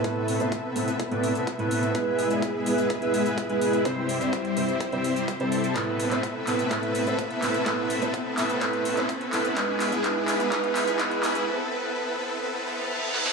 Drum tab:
HH |x-oxx-oxxxoxxxox|x-oxx-oxxxoxxxox|x-oxxxoxxxoxxxox|x-oxx-oxxxoxxxox|
SH |x-xxx-xxx-xxx-xx|x-xxx-xxx-xxx-xx|x-xxx-xxx-xxx-xx|x-xxx-xxx-xxx-xx|
CP |----------------|----------------|----------------|x--x--x-x-----x-|
SD |----------------|----------------|----------------|----------------|
BD |o---o---o---o---|o---o---o---o---|o---o---o---o---|o---o---o---o---|

HH |x-oxx-oxxxoxxxox|x-oxx-oxxxoxxxox|----------------|
SH |x-xxx-xxx-xxx-xx|x-xxx-xxx-xxx-xx|----------------|
CP |x-----x-x--x--x-|x-x-x-x-x-x-x-x-|----------------|
SD |----------------|----------------|--------------oo|
BD |o---o---o---o---|o---o---o---o---|----------------|